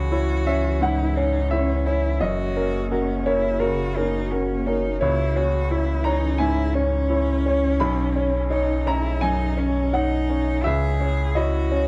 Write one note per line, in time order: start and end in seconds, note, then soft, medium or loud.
0.00 0.77 C#2 medium
0.00 2.23 C#2 medium
0.00 2.21 E3 medium
0.00 0.47 C#4 soft
0.00 2.17 C#4 medium
0.00 0.83 F#4 medium
0.00 0.12 C#5 medium
0.00 4.98 C#5 medium
0.12 0.43 E4 soft
0.12 0.43 C#5 soft
0.47 0.78 C#4 soft
0.47 0.78 C#5 soft
0.47 0.79 E5 medium
0.82 1.37 G#2 soft
0.82 1.17 E4 medium
0.82 1.47 F#5 medium
1.16 1.48 C#4 soft
1.16 1.53 D#4 medium
1.16 1.48 C#5 soft
1.51 1.88 C#4 medium
1.51 1.83 E4 soft
1.51 1.83 C#5 soft
1.51 2.17 E5 medium
1.86 2.17 C#4 soft
1.86 2.22 E4 medium
1.86 2.18 C#5 soft
2.21 5.04 F#1 medium
2.21 3.57 F#2 medium
2.21 5.01 A#3 medium
2.21 2.90 F#4 medium
2.21 5.01 F#4 medium
2.21 3.22 D#5 medium
2.57 2.88 C#4 soft
2.57 2.88 A#4 soft
2.91 3.28 C#4 medium
2.91 3.23 F#4 soft
2.91 3.23 A#4 soft
3.26 3.57 C#4 soft
3.26 3.62 E4 medium
3.26 3.58 A#4 soft
3.26 3.58 C#5 medium
3.60 4.18 C#3 soft
3.60 3.97 F#4 medium
3.60 3.96 A#4 medium
3.96 4.28 C#4 soft
3.96 4.32 D#4 medium
3.96 4.28 A#4 medium
4.31 4.68 C#4 medium
4.31 4.63 F#4 soft
4.31 4.63 A#4 soft
4.66 4.98 C#4 soft
4.66 5.01 D#4 medium
4.66 4.98 A#4 soft
5.01 6.36 C#2 medium
5.01 7.83 C#2 medium
5.01 7.80 E3 medium
5.01 10.62 C#4 medium
5.01 5.37 E4 medium
5.01 10.60 C#5 medium
5.01 5.35 C#5 medium
5.36 5.67 C#4 soft
5.36 5.72 F#4 medium
5.36 5.67 C#5 soft
5.71 6.06 E4 medium
5.71 6.02 E4 soft
5.71 6.02 C#5 soft
6.04 6.37 C#4 soft
6.04 6.41 D#4 medium
6.04 6.37 C#5 soft
6.04 6.37 A#5 medium
6.38 6.96 G#2 soft
6.38 6.75 E4 medium
6.38 7.76 G#5 medium
6.74 8.49 C#4 medium
6.74 7.07 C#4 soft
6.74 7.07 C#5 soft
7.10 7.42 E4 soft
7.10 7.42 C#5 soft
7.46 7.77 C#4 soft
7.46 7.77 C#5 soft
7.80 10.67 B1 medium
7.80 9.18 B1 medium
7.80 10.64 D#5 medium
7.80 8.82 B5 medium
8.16 8.48 C#4 soft
8.16 8.48 C#5 soft
8.50 8.88 D#4 medium
8.50 8.82 D#4 soft
8.50 8.83 C#5 medium
8.86 9.18 C#4 soft
8.86 9.24 E4 medium
8.86 9.18 C#5 soft
8.86 9.19 A#5 medium
9.21 9.79 F#2 soft
9.21 9.60 D#4 medium
9.21 9.89 G#5 medium
9.57 9.89 C#4 soft
9.57 9.95 C#4 medium
9.57 9.90 C#5 soft
9.93 10.25 D#4 soft
9.93 10.67 D#4 medium
9.93 10.25 C#5 soft
9.93 10.60 F#5 medium
10.29 10.61 C#4 soft
10.29 10.61 C#5 soft
10.63 11.88 C#2 medium
10.63 11.88 C#4 medium
10.63 11.88 E4 medium
10.63 11.38 G#4 medium
10.63 11.88 C#5 medium
10.63 11.31 E5 medium
11.00 11.32 C#4 soft
11.00 11.32 C#5 soft
11.35 11.68 E4 soft
11.35 11.88 F#4 medium
11.35 11.68 C#5 soft
11.35 11.88 D#5 medium
11.71 11.88 C#4 soft
11.71 11.88 C#5 soft